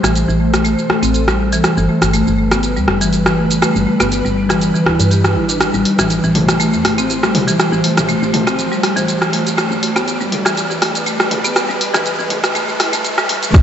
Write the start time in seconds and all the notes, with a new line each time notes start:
Already playing: A3 A4 C5, riser
0.03 A1 E3, cross-stick, closed hi-hat, shaker
0.15 closed hi-hat, shaker
0.28 A1 E3, shaker
0.40 A3
0.54 cross-stick, closed hi-hat, shaker
0.64 A3, closed hi-hat, shaker
0.79 shaker
0.89 A3, cross-stick
1.03 A1 C4, closed hi-hat, shaker
1.14 closed hi-hat, shaker
1.28 G3, cross-stick, shaker
1.52 E3, closed hi-hat, shaker
1.64 G3 B4, cross-stick, closed hi-hat, shaker
1.77 G1 E3, shaker
1.89 A3
2.02 G1, cross-stick, closed hi-hat, shaker
2.13 A3, closed hi-hat, shaker
2.27 G1, shaker
2.38 A3
2.51 B3, cross-stick, closed hi-hat, shaker
2.63 closed hi-hat, shaker
2.76 D2 G3, shaker
2.88 F1, cross-stick
3.01 G1 E3, closed hi-hat, shaker
3.13 closed hi-hat, shaker
3.26 E3, cross-stick, shaker
3.37 A3
3.51 closed hi-hat, shaker
3.62 A3, cross-stick, closed hi-hat, shaker
3.76 G1, shaker
3.87 A3
4.00 G1 B3, cross-stick, closed hi-hat, shaker
4.12 closed hi-hat, shaker
4.25 G1 G3, shaker
4.49 E3, cross-stick, closed hi-hat, shaker
4.61 closed hi-hat, shaker
4.74 E3, shaker
4.86 D1 E4, cross-stick
5.00 G2, closed hi-hat, shaker
5.11 G4, closed hi-hat, shaker
5.24 cross-stick, shaker
5.36 A1 E4
5.49 D4, closed hi-hat, shaker
5.61 A3 G4 C5, cross-stick, closed hi-hat, shaker
5.74 A1 G3, shaker
5.85 open hi-hat
5.98 A1 E3, cross-stick, closed hi-hat, shaker
6.10 closed hi-hat, shaker
6.24 A1 E3, shaker
6.35 A3, open hi-hat, mid tom
6.49 cross-stick, closed hi-hat, shaker
6.60 A3, closed hi-hat, shaker
6.73 E2, shaker
6.85 G1 A3, cross-stick, open hi-hat
6.98 A1 C4, closed hi-hat, shaker
7.10 closed hi-hat, shaker
7.23 G3, cross-stick, shaker
7.35 open hi-hat, mid tom
7.48 E3, closed hi-hat, shaker
7.60 cross-stick, closed hi-hat, shaker
7.72 A1 E3, shaker
7.84 A3, open hi-hat
7.97 A1, cross-stick, closed hi-hat, mid tom, shaker
8.09 A3, closed hi-hat, shaker
8.22 A1, shaker
8.33 A3, open hi-hat, mid tom
8.47 C4, cross-stick, closed hi-hat, shaker
8.59 closed hi-hat, shaker
8.72 G3, shaker
8.83 cross-stick, open hi-hat
8.96 A1 E3, closed hi-hat, shaker
9.08 closed hi-hat, shaker
9.21 E3, cross-stick, shaker
9.33 A3, open hi-hat
9.47 closed hi-hat, shaker
9.58 G3 A3 B4, cross-stick, closed hi-hat, shaker
9.70 G1, shaker
9.83 A3, open hi-hat
9.96 G1 B3, cross-stick, closed hi-hat, shaker
10.08 closed hi-hat, shaker
10.20 G1 G3, shaker
10.32 open hi-hat, mid tom
10.45 E3, cross-stick, closed hi-hat, shaker
10.57 closed hi-hat, shaker
10.70 D2 E3, shaker
10.82 F1 A3, cross-stick, open hi-hat
10.95 G1, closed hi-hat, shaker
11.06 A3, closed hi-hat, shaker
11.20 cross-stick, shaker
11.31 A3, open hi-hat, mid tom
11.44 B3, closed hi-hat, shaker
11.56 cross-stick, closed hi-hat, shaker
11.69 G1 G3, shaker
11.81 open hi-hat
11.94 G1 E3, cross-stick, closed hi-hat, mid tom, shaker
12.06 closed hi-hat, shaker
12.19 G1 E3, shaker
12.30 A3, open hi-hat, mid tom
12.44 cross-stick, closed hi-hat, shaker
12.55 A3, closed hi-hat, shaker
12.69 shaker
12.79 E4, cross-stick, open hi-hat
12.93 G1 A3, closed hi-hat, shaker
13.04 closed hi-hat, shaker
13.18 G3, cross-stick, shaker
13.29 G1, open hi-hat
13.43 A3, closed hi-hat, shaker
13.54 A3, kick, cross-stick, closed hi-hat, sub drop, shaker